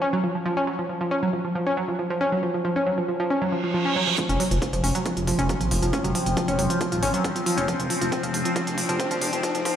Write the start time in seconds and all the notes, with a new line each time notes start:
0.02 C#4
0.13 F#3
0.24 F3
0.35 F3
0.46 F3
0.57 C#4
0.67 F#3
0.79 F3
0.89 F3
1.01 F3
1.11 C#4
1.23 F#3
1.33 F3
1.45 F3
1.55 F3
1.67 C#4
1.77 F#3
1.88 F3
1.99 F3
2.10 F3
2.21 C#4
2.32 F#3
2.43 F3
2.54 F3
2.65 F3
2.76 C#4
2.87 F#3
2.98 F3
3.08 F3
3.20 F3
3.30 C#4, reverse cymbal
3.42 F#3
3.52 F3
3.64 F3
3.74 F3
3.85 C#4
3.96 F#3
4.07 F3
4.18 F3 C4, kick, closed hi-hat, riser
4.29 F1 C#4, closed hi-hat
4.40 F#3, open hi-hat
4.51 F1 F3, closed hi-hat
4.62 F3, kick, closed hi-hat
4.73 F1 F3, closed hi-hat
4.84 F1 C#4, open hi-hat
4.95 F#3, closed hi-hat
5.05 F3, kick, closed hi-hat
5.17 F1 F3, closed hi-hat
5.27 F3, open hi-hat
5.39 F1 C#4, closed hi-hat
5.49 F#3, kick, closed hi-hat
5.61 G#1 F3, closed hi-hat
5.71 F1 F3, open hi-hat
5.82 F1 F3, closed hi-hat
5.93 C#4, kick, closed hi-hat
6.04 F1 F#3, closed hi-hat
6.15 F3, open hi-hat
6.26 F1 F3, closed hi-hat
6.37 F3, kick, closed hi-hat
6.48 F1 C#4, closed hi-hat
6.59 F1 F#3, open hi-hat
6.70 F3, closed hi-hat
6.81 F3, kick, closed hi-hat
6.92 D#1 F3, closed hi-hat
7.03 G#1 C#4, open hi-hat
7.14 F#3, closed hi-hat
7.24 F3, kick, closed hi-hat
7.36 F3, closed hi-hat
7.46 F3, open hi-hat
7.57 F1 C#4, closed hi-hat
7.68 F3, kick, closed hi-hat
7.79 F1 F3, closed hi-hat
7.90 F3, open hi-hat
8.01 F1 F3, closed hi-hat
8.12 C4, kick, closed hi-hat
8.23 F1 F3, closed hi-hat
8.34 F1 F3, open hi-hat
8.45 F3, closed hi-hat
8.56 F3, kick, closed hi-hat
8.67 F1 F3, closed hi-hat
8.78 F3, open hi-hat
8.89 F1 F3, closed hi-hat
9.00 C4, kick, closed hi-hat
9.11 G#1 F3, closed hi-hat
9.21 F1 F3, open hi-hat
9.33 F1 F3, closed hi-hat
9.43 F3, kick, closed hi-hat
9.55 F1 F3, closed hi-hat
9.65 F3, kick, open hi-hat